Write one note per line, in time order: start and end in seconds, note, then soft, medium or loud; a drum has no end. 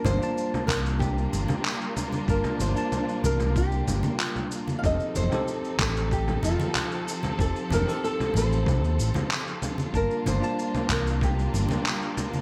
0.00 4.80 G3 medium
0.00 0.16 A#3 medium
0.00 4.80 A#3 medium
0.00 0.17 D4 medium
0.00 4.79 D4 medium
0.00 0.17 F4 medium
0.00 4.80 F4 medium
0.00 0.18 A5 medium
0.04 0.15 G1 medium
0.04 0.67 C5 loud
0.04 low conga medium
0.04 cabasa medium
0.19 2.23 A#3 medium
0.19 2.24 D4 medium
0.19 2.25 F4 medium
0.19 cabasa soft
0.23 2.26 A5 medium
0.38 cabasa soft
0.54 low conga medium
0.54 cabasa soft
0.67 1.24 C2 medium
0.67 0.76 A#4 medium
0.67 kick loud
0.67 clap medium
0.67 low conga medium
0.67 cabasa medium
0.86 cabasa soft
0.99 1.92 G4 medium
0.99 kick loud
0.99 low conga medium
0.99 cabasa soft
1.18 cabasa soft
1.33 1.43 G1 medium
1.33 low conga medium
1.33 cabasa medium
1.48 high conga medium
1.48 low conga medium
1.48 cabasa soft
1.65 clap medium
1.65 cabasa soft
1.81 cabasa soft
1.97 low conga medium
1.97 cabasa medium
2.12 high conga medium
2.12 cabasa soft
2.27 2.39 G1 medium
2.27 2.72 A#3 medium
2.27 2.72 D4 medium
2.27 2.73 F4 medium
2.27 2.59 A#4 loud
2.27 2.73 A5 medium
2.27 kick loud
2.27 cabasa soft
2.44 low conga medium
2.44 cabasa soft
2.60 2.71 G1 loud
2.60 3.25 C5 loud
2.60 low conga medium
2.60 cabasa medium
2.74 4.79 A#3 medium
2.74 4.79 D4 medium
2.74 4.80 F4 medium
2.74 cabasa soft
2.78 4.81 A5 medium
2.92 low conga medium
2.92 cabasa soft
3.09 cabasa soft
3.24 3.79 C2 medium
3.24 3.58 A#4 medium
3.24 low conga medium
3.24 cabasa medium
3.40 low conga medium
3.40 cabasa soft
3.56 4.21 G4 medium
3.56 kick loud
3.56 cabasa soft
3.72 cabasa soft
3.87 3.98 G1 medium
3.87 low conga medium
3.87 cabasa medium
4.03 high conga loud
4.03 cabasa soft
4.20 4.48 F4 medium
4.20 clap medium
4.20 cabasa soft
4.36 low conga medium
4.36 cabasa soft
4.51 cabasa medium
4.68 high conga medium
4.68 cabasa soft
4.79 4.85 F5 medium
4.83 4.94 F1 medium
4.83 9.90 F3 medium
4.83 5.27 C4 medium
4.83 9.90 C4 medium
4.83 7.36 D#4 medium
4.83 5.28 D#4 medium
4.83 5.28 G4 medium
4.83 9.90 A4 medium
4.83 5.28 A4 medium
4.83 5.16 D#5 loud
4.83 kick loud
4.83 low conga medium
4.83 cabasa soft
5.00 cabasa soft
5.15 5.26 F1 loud
5.15 5.81 C5 loud
5.15 low conga medium
5.15 cabasa medium
5.30 7.34 C4 medium
5.30 7.35 D#4 medium
5.30 7.36 G4 medium
5.30 low conga medium
5.30 cabasa soft
5.34 7.36 A4 medium
5.48 cabasa soft
5.64 cabasa soft
5.79 6.35 A1 medium
5.79 6.13 A4 medium
5.79 kick loud
5.79 clap medium
5.79 low conga medium
5.79 cabasa medium
5.97 cabasa soft
6.11 6.44 G4 medium
6.11 kick loud
6.11 cabasa soft
6.28 low conga medium
6.28 cabasa soft
6.43 6.54 F1 medium
6.43 7.03 F4 medium
6.43 low conga medium
6.43 cabasa medium
6.60 high conga loud
6.60 cabasa soft
6.75 clap medium
6.75 low conga medium
6.75 cabasa soft
6.92 cabasa soft
7.08 cabasa medium
7.23 high conga medium
7.23 low conga medium
7.23 cabasa soft
7.38 7.50 F1 loud
7.38 7.83 C4 medium
7.38 7.83 D#4 medium
7.38 12.41 F4 medium
7.38 7.83 G4 medium
7.38 7.84 A4 medium
7.38 7.73 A4 medium
7.38 kick loud
7.38 cabasa soft
7.56 cabasa soft
7.70 7.82 F1 medium
7.70 low conga medium
7.72 7.90 A#4 medium
7.72 low conga medium
7.72 cabasa medium
7.85 9.89 C4 medium
7.85 9.90 D#4 medium
7.85 9.91 G4 medium
7.85 cabasa soft
7.89 9.91 A4 medium
7.89 8.03 A4 medium
8.04 8.36 A4 loud
8.04 cabasa soft
8.20 low conga medium
8.20 cabasa soft
8.34 8.66 A1 medium
8.34 9.27 C5 medium
8.34 low conga medium
8.34 cabasa medium
8.52 cabasa soft
8.66 8.83 C2 medium
8.66 kick loud
8.66 low conga medium
8.66 cabasa soft
8.83 8.99 D#2 medium
8.83 cabasa soft
8.99 9.09 A1 medium
8.99 cabasa medium
9.14 high conga loud
9.14 low conga medium
9.14 cabasa soft
9.31 clap medium
9.31 cabasa soft
9.47 cabasa soft
9.62 low conga medium
9.62 cabasa medium
9.78 high conga medium
9.78 cabasa soft
9.93 10.05 G1 medium
9.93 12.41 G3 medium
9.93 10.38 A#3 medium
9.93 12.41 A#3 medium
9.93 10.38 D4 medium
9.93 12.41 D4 medium
9.93 10.38 F4 medium
9.93 10.28 A#4 medium
9.93 10.39 A5 medium
9.93 kick loud
9.93 cabasa soft
10.11 cabasa soft
10.26 10.37 G1 medium
10.26 10.91 C5 loud
10.26 low conga medium
10.26 cabasa medium
10.39 12.41 A#3 medium
10.39 12.41 D4 medium
10.39 12.41 F4 medium
10.39 cabasa soft
10.44 12.41 A5 medium
10.59 cabasa soft
10.75 low conga medium
10.75 cabasa soft
10.89 11.45 C2 medium
10.89 11.23 A#4 medium
10.89 kick loud
10.89 clap medium
10.89 low conga medium
10.89 cabasa medium
11.07 cabasa soft
11.21 12.14 G4 medium
11.21 kick loud
11.21 low conga medium
11.21 cabasa soft
11.39 cabasa soft
11.54 11.65 G1 medium
11.54 low conga medium
11.54 cabasa medium
11.68 high conga medium
11.68 low conga medium
11.68 cabasa soft
11.86 clap medium
11.86 cabasa soft
12.02 cabasa soft
12.17 low conga medium
12.17 cabasa medium
12.33 high conga medium
12.33 cabasa soft